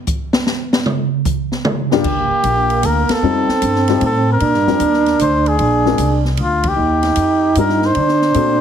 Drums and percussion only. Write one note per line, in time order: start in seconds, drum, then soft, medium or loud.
0.07 kick medium
0.07 hi-hat pedal medium
0.33 snare loud
0.46 snare loud
0.73 snare loud
0.86 mid tom medium
1.25 kick medium
1.25 hi-hat pedal medium
1.52 snare soft
1.65 mid tom loud
1.91 snare soft
2.04 kick medium
2.04 crash medium
2.44 kick soft
2.44 hi-hat pedal soft
2.44 ride medium
2.70 ride soft
2.83 kick soft
2.83 hi-hat pedal medium
2.83 ride medium
3.09 snare medium
3.09 ride medium
3.49 snare soft
3.62 kick soft
3.62 hi-hat pedal medium
3.62 ride medium
3.75 snare soft
3.88 snare soft
3.88 ride soft
4.01 kick soft
4.01 ride medium
4.40 kick soft
4.40 ride medium
4.54 snare soft
4.67 snare soft
4.80 kick soft
4.80 hi-hat pedal medium
4.80 ride medium
4.93 snare soft
5.06 snare soft
5.06 ride soft
5.19 kick soft
5.19 hi-hat pedal medium
5.19 ride medium
5.46 ride soft
5.59 kick soft
5.59 ride medium
5.86 snare soft
5.98 hi-hat pedal medium
5.98 ride medium
6.25 snare soft
6.37 kick soft
6.37 ride medium
6.64 kick medium
6.64 ride medium
7.03 snare soft
7.03 ride soft
7.16 kick soft
7.16 hi-hat pedal medium
7.16 ride medium
7.55 kick soft
7.55 hi-hat pedal medium
7.55 ride medium
7.69 snare soft
7.82 snare soft
7.95 kick soft
7.95 ride soft
8.08 snare soft
8.22 snare soft
8.34 kick soft
8.34 hi-hat pedal soft
8.34 ride medium